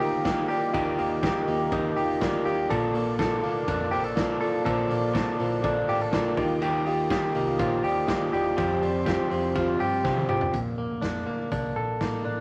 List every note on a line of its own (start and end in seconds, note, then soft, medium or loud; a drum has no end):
0.00 0.42 D2 loud
0.00 0.73 D#3 medium
0.00 0.24 A#3 medium
0.00 0.25 A#3 soft
0.00 1.71 D#4 medium
0.00 0.25 D#4 medium
0.00 0.25 F4 loud
0.00 0.25 G4 medium
0.00 0.25 G4 loud
0.00 0.26 A#4 medium
0.00 2.66 A#4 medium
0.00 2.72 C5 medium
0.00 0.26 D#5 loud
0.00 2.45 F5 loud
0.00 2.66 F5 medium
0.00 2.66 G5 medium
0.00 0.47 D#6 medium
0.00 open hi-hat medium
0.25 0.50 D#3 medium
0.25 0.50 F3 medium
0.25 0.50 A#3 medium
0.25 0.48 D#4 loud
0.25 0.45 F4 loud
0.25 0.45 G4 medium
0.25 0.47 G4 loud
0.25 0.45 A#4 medium
0.25 0.45 D#5 loud
0.25 kick loud
0.25 snare loud
0.25 hi-hat pedal medium
0.25 ride soft
0.48 0.72 A#3 medium
0.48 0.74 D#4 medium
0.48 0.69 F4 medium
0.48 0.73 G4 medium
0.48 0.69 G4 medium
0.48 0.69 A#4 medium
0.48 0.69 D5 medium
0.48 6.34 D6 medium
0.48 open hi-hat medium
0.73 0.95 D#2 loud
0.73 0.98 D#3 loud
0.73 0.99 F3 loud
0.73 0.98 A#3 loud
0.73 0.98 D#4 loud
0.73 0.93 F4 loud
0.73 0.93 G4 medium
0.73 0.96 G4 loud
0.73 0.93 A#4 loud
0.73 0.93 D#5 loud
0.73 kick loud
0.73 hi-hat pedal medium
0.73 ride medium
0.97 1.30 D#2 medium
0.97 1.22 A#3 medium
0.97 1.23 D#4 medium
0.97 1.18 F4 medium
0.97 1.22 G4 medium
0.97 1.18 G4 medium
0.97 1.18 A#4 medium
0.97 1.18 D#5 medium
0.97 open hi-hat medium
1.21 1.47 D#3 medium
1.21 1.48 F3 medium
1.21 1.48 A#3 loud
1.21 1.47 D#4 loud
1.21 1.42 F4 medium
1.21 1.42 G4 medium
1.21 1.46 G4 loud
1.21 1.42 A#4 medium
1.21 1.42 D#5 medium
1.21 kick loud
1.21 snare loud
1.21 hi-hat pedal medium
1.21 ride medium
1.46 1.90 D#2 medium
1.46 1.70 A#3 soft
1.46 1.72 D#4 soft
1.46 1.67 F4 medium
1.46 1.67 G4 medium
1.46 1.72 G4 medium
1.46 1.67 A#4 medium
1.46 1.67 D#5 loud
1.46 open hi-hat medium
1.71 1.96 F3 medium
1.71 1.96 A#3 medium
1.71 1.97 D#4 medium
1.71 1.91 F4 loud
1.71 1.91 G4 loud
1.71 1.95 G4 medium
1.71 1.91 A#4 loud
1.71 1.91 D#5 loud
1.71 kick loud
1.71 hi-hat pedal medium
1.71 ride medium
1.96 2.18 D#2 medium
1.96 2.22 A#3 soft
1.96 2.22 D#4 medium
1.96 2.16 F4 medium
1.96 2.16 G4 medium
1.96 2.21 G4 medium
1.96 2.16 A#4 medium
1.96 2.16 D#5 loud
1.96 2.19 A#5 medium
1.96 open hi-hat medium
2.21 2.42 D2 medium
2.21 2.46 D#3 medium
2.21 2.46 F3 loud
2.21 2.47 A#3 loud
2.21 2.46 D#4 loud
2.21 2.41 F4 medium
2.21 2.41 G4 medium
2.21 2.45 G4 loud
2.21 2.41 A#4 medium
2.21 2.41 D5 loud
2.21 2.44 G5 medium
2.21 kick loud
2.21 snare loud
2.21 hi-hat pedal medium
2.21 ride soft
2.45 2.67 D#2 medium
2.45 2.70 A#3 soft
2.45 2.71 D#4 medium
2.45 2.65 F4 medium
2.45 2.65 G4 medium
2.45 2.70 G4 medium
2.45 2.65 A#4 medium
2.45 2.65 F5 loud
2.45 open hi-hat medium
2.69 3.40 A#1 medium
2.69 2.95 A#2 medium
2.69 2.95 D3 medium
2.69 2.95 F3 loud
2.69 8.54 A#3 medium
2.69 2.94 A#3 loud
2.69 2.94 D4 loud
2.69 2.89 F4 loud
2.69 2.89 A4 medium
2.69 2.92 A4 loud
2.69 2.90 A#4 loud
2.69 2.90 D5 loud
2.69 10.50 F5 medium
2.69 6.34 A5 medium
2.69 kick loud
2.69 hi-hat pedal medium
2.69 ride medium
2.93 3.18 F3 medium
2.93 3.19 A#3 medium
2.93 3.19 D4 medium
2.93 3.14 F4 medium
2.93 3.19 A4 medium
2.93 3.14 A4 medium
2.93 3.14 A#4 medium
2.93 3.14 F5 medium
2.93 open hi-hat medium
3.18 3.43 A#2 medium
3.18 3.43 D3 loud
3.18 3.44 F3 loud
3.18 3.44 A#3 loud
3.18 3.44 D4 loud
3.18 3.38 F4 medium
3.18 3.39 A4 medium
3.18 3.43 A4 loud
3.18 3.39 A#4 medium
3.18 3.39 D5 medium
3.18 kick loud
3.18 snare loud
3.18 hi-hat pedal medium
3.18 ride medium
3.42 3.65 D2 medium
3.42 3.69 D4 medium
3.42 3.62 F4 medium
3.42 3.62 A4 medium
3.42 3.68 A4 medium
3.42 3.62 A#4 medium
3.42 3.63 F5 loud
3.42 open hi-hat medium
3.46 3.66 F3 soft
3.46 3.67 A#3 medium
3.67 3.94 F2 loud
3.67 3.92 F3 medium
3.67 3.93 A#3 medium
3.67 3.92 D4 medium
3.67 3.87 F4 loud
3.67 3.88 A4 medium
3.67 3.90 A4 medium
3.67 3.88 A#4 loud
3.67 3.88 D5 loud
3.67 kick loud
3.67 hi-hat pedal medium
3.67 ride medium
3.91 4.34 A#1 loud
3.91 4.16 F3 medium
3.91 4.17 A#3 medium
3.91 4.17 D4 medium
3.91 4.11 F4 medium
3.91 4.04 G4 medium
3.91 4.12 A4 medium
3.91 4.17 A4 medium
3.91 4.12 A#4 medium
3.91 4.12 C5 medium
3.91 open hi-hat medium
4.04 4.39 A4 medium
4.16 4.42 A#2 medium
4.16 4.42 D3 medium
4.16 4.41 F3 medium
4.16 4.40 A#3 loud
4.16 4.39 D4 loud
4.16 4.36 F4 loud
4.16 4.36 A4 medium
4.16 4.39 A4 loud
4.16 4.36 A#4 medium
4.16 4.37 D5 loud
4.16 kick loud
4.16 snare loud
4.16 hi-hat pedal medium
4.16 ride medium
4.40 4.64 F3 medium
4.40 4.64 A#3 medium
4.40 4.64 D4 medium
4.40 4.61 F4 medium
4.40 4.65 A4 medium
4.40 4.61 A4 medium
4.40 4.61 A#4 medium
4.40 4.61 D5 loud
4.40 open hi-hat medium
4.64 4.87 A#1 medium
4.64 4.90 A#2 medium
4.64 4.90 D3 loud
4.64 4.90 F3 loud
4.64 4.88 A#3 loud
4.64 4.88 D4 loud
4.64 4.86 F4 loud
4.64 4.87 A4 loud
4.64 4.86 A4 medium
4.64 4.86 A#4 loud
4.64 4.86 C5 loud
4.64 kick loud
4.64 hi-hat pedal medium
4.64 ride medium
4.88 5.22 A#1 loud
4.88 5.12 F3 medium
4.88 5.13 A#3 medium
4.88 5.13 D4 medium
4.88 5.11 F4 medium
4.88 5.13 A4 medium
4.88 5.11 A4 medium
4.88 5.11 A#4 medium
4.88 open hi-hat medium
4.92 5.11 D5 loud
5.13 5.38 A#2 loud
5.13 5.39 D3 loud
5.13 5.38 F3 loud
5.13 5.37 A#3 loud
5.13 5.37 D4 loud
5.13 5.35 F4 medium
5.13 5.36 A4 loud
5.13 5.35 A4 medium
5.13 5.35 A#4 medium
5.13 5.35 D5 medium
5.13 kick loud
5.13 snare loud
5.13 hi-hat pedal medium
5.13 ride medium
5.37 5.81 A#1 loud
5.37 5.61 F3 soft
5.37 5.62 A#3 medium
5.37 5.62 D4 medium
5.37 5.59 F4 loud
5.37 5.63 A4 medium
5.37 5.59 A4 medium
5.37 5.60 A#4 medium
5.37 5.60 C5 loud
5.37 open hi-hat medium
5.62 5.87 F3 medium
5.62 5.88 A#3 medium
5.62 5.88 D4 medium
5.62 5.83 F4 loud
5.62 5.86 A4 medium
5.62 5.84 A4 loud
5.62 5.84 A#4 loud
5.62 5.84 D5 loud
5.62 kick loud
5.62 hi-hat pedal medium
5.62 ride medium
5.87 6.10 A1 loud
5.87 6.11 F3 medium
5.87 6.12 A#3 medium
5.87 6.12 D4 medium
5.87 6.08 F4 medium
5.87 6.01 G4 medium
5.87 6.12 A4 medium
5.87 6.08 A4 medium
5.87 6.09 A#4 medium
5.87 6.09 D5 medium
5.87 6.11 F5 medium
5.87 open hi-hat medium
6.01 6.43 A4 medium
6.11 6.34 A#1 medium
6.11 6.37 A#2 medium
6.11 6.37 D3 medium
6.11 6.37 F3 medium
6.11 6.37 A#3 loud
6.11 6.37 D4 loud
6.11 6.33 F4 medium
6.11 6.36 A4 medium
6.11 6.33 A4 medium
6.11 6.33 A#4 medium
6.11 6.33 D5 loud
6.11 6.59 G5 medium
6.11 kick loud
6.11 snare loud
6.11 hi-hat pedal medium
6.11 ride medium
6.36 7.21 D#2 medium
6.36 6.60 D#3 medium
6.36 6.60 A#3 medium
6.36 6.77 F4 medium
6.36 6.60 F4 medium
6.36 6.61 G4 medium
6.36 6.77 G4 medium
6.36 6.77 A#4 medium
6.36 6.77 D#5 loud
6.36 8.56 G5 medium
6.36 8.55 D#6 medium
6.36 kick loud
6.36 open hi-hat medium
6.61 6.86 D#3 medium
6.61 6.86 F3 medium
6.61 6.86 A#3 loud
6.61 6.85 F4 loud
6.61 6.83 G4 loud
6.61 hi-hat pedal medium
6.61 ride medium
6.84 7.10 A#3 soft
6.84 7.10 F4 medium
6.84 7.06 F4 medium
6.84 7.10 G4 medium
6.84 7.06 G4 medium
6.84 7.06 A#4 medium
6.84 7.06 D#5 loud
6.84 open hi-hat medium
7.09 7.35 D#3 medium
7.09 7.35 F3 medium
7.09 7.35 A#3 loud
7.09 7.30 F4 medium
7.09 7.34 F4 loud
7.09 7.30 G4 medium
7.09 7.32 G4 loud
7.09 7.30 A#4 medium
7.09 7.30 F5 loud
7.09 kick loud
7.09 snare loud
7.09 hi-hat pedal medium
7.09 ride medium
7.33 7.56 C2 medium
7.33 7.59 A#3 soft
7.33 7.54 F4 medium
7.33 7.59 F4 soft
7.33 7.59 G4 medium
7.33 7.55 G4 medium
7.33 7.55 A#4 medium
7.33 7.55 D#5 medium
7.33 open hi-hat medium
7.58 7.81 A#1 medium
7.58 7.84 F3 medium
7.58 7.84 A#3 medium
7.58 7.79 F4 loud
7.58 7.83 F4 medium
7.58 7.79 G4 loud
7.58 7.81 G4 medium
7.58 7.79 A#4 loud
7.58 7.79 C5 loud
7.58 kick loud
7.58 hi-hat pedal medium
7.58 ride medium
7.82 8.05 D#2 loud
7.82 8.07 A#3 medium
7.82 8.04 F4 medium
7.82 8.07 F4 medium
7.82 8.08 G4 medium
7.82 8.04 G4 medium
7.82 8.04 A#4 medium
7.82 8.04 D5 medium
7.82 open hi-hat medium
8.07 8.32 D#3 medium
8.07 8.30 D#3 loud
8.07 8.33 F3 medium
8.07 8.32 A#3 medium
8.07 8.28 F4 medium
8.07 8.31 F4 loud
8.07 8.27 G4 medium
8.07 8.30 G4 medium
8.07 8.28 A#4 medium
8.07 8.28 D#5 loud
8.07 kick loud
8.07 snare loud
8.07 hi-hat pedal medium
8.07 ride medium
8.31 8.54 D#2 medium
8.31 8.57 A#3 medium
8.31 8.57 F4 medium
8.31 8.53 F4 medium
8.31 8.57 G4 medium
8.31 8.53 G4 medium
8.31 8.53 A#4 medium
8.31 8.53 D5 loud
8.31 open hi-hat medium
8.56 8.79 F2 medium
8.56 8.82 F3 medium
8.56 8.82 G3 medium
8.56 8.82 C4 medium
8.56 8.77 F4 loud
8.56 8.80 F4 loud
8.56 8.77 G4 medium
8.56 10.52 G4 medium
8.56 9.05 G4 medium
8.56 8.77 C5 loud
8.56 10.52 C5 medium
8.56 8.77 F5 loud
8.56 10.52 C6 medium
8.56 kick loud
8.56 hi-hat pedal medium
8.56 ride medium
8.81 9.13 F2 loud
8.81 9.06 G3 soft
8.81 9.06 C4 medium
8.81 9.06 F4 medium
8.81 9.02 F4 medium
8.81 9.02 G4 medium
8.81 9.02 C5 medium
8.81 9.02 D5 medium
8.81 open hi-hat medium
9.06 9.31 F3 medium
9.06 9.32 G3 loud
9.06 9.32 C4 loud
9.06 9.26 F4 medium
9.06 9.30 F4 loud
9.06 9.26 G4 medium
9.06 9.79 G4 medium
9.06 9.26 C5 medium
9.06 9.26 F5 medium
9.06 kick loud
9.06 snare loud
9.06 hi-hat pedal medium
9.06 ride medium
9.30 9.73 F2 medium
9.30 9.57 C4 medium
9.30 9.50 F4 medium
9.30 9.56 F4 soft
9.30 9.50 G4 medium
9.30 9.50 C5 medium
9.30 9.50 F5 medium
9.30 open hi-hat medium
9.34 9.56 G3 soft
9.55 9.81 F3 medium
9.55 9.81 G3 medium
9.55 9.81 C4 medium
9.55 9.75 F4 loud
9.55 9.75 G4 medium
9.55 9.75 C5 medium
9.55 9.75 F5 loud
9.55 kick loud
9.55 hi-hat pedal medium
9.55 ride medium
9.59 9.79 F4 medium
9.79 10.01 G2 medium
9.79 10.05 C4 medium
9.79 9.99 F4 medium
9.79 10.05 F4 medium
9.79 9.99 G4 medium
9.79 10.28 G4 medium
9.79 9.99 C5 medium
9.79 10.00 F5 medium
9.79 open hi-hat medium
9.83 10.04 G3 soft
10.04 10.26 C3 loud
10.04 10.30 F3 medium
10.04 10.30 G3 medium
10.04 10.30 C4 medium
10.04 10.24 F4 medium
10.04 10.29 F4 medium
10.04 10.24 G4 medium
10.04 10.24 C5 medium
10.04 10.24 F5 medium
10.04 kick loud
10.04 snare medium
10.17 high tom medium
10.29 10.50 C2 medium
10.29 10.55 C4 medium
10.29 10.49 F4 medium
10.29 10.54 F4 medium
10.29 10.59 G4 medium
10.29 10.49 G4 medium
10.29 10.49 C5 medium
10.29 10.49 F5 loud
10.29 mid tom loud
10.33 10.56 G3 medium
10.41 floor tom loud
10.53 10.85 A#1 medium
10.53 12.40 A#2 medium
10.53 kick loud
10.53 closed hi-hat medium
10.78 11.26 A#3 soft
10.92 11.02 D2 medium
11.01 11.23 F2 medium
11.01 11.51 D4 medium
11.01 kick medium
11.01 snare medium
11.01 closed hi-hat medium
11.26 11.48 D2 medium
11.26 12.00 A#3 soft
11.52 11.73 C2 medium
11.52 12.24 D4 medium
11.52 kick loud
11.52 closed hi-hat medium
11.76 11.97 A#1 medium
11.76 12.40 A4 medium
12.01 12.22 A1 medium
12.01 12.40 A#3 medium
12.01 kick medium
12.01 snare loud
12.01 closed hi-hat medium
12.25 12.40 A1 medium
12.25 12.40 D4 medium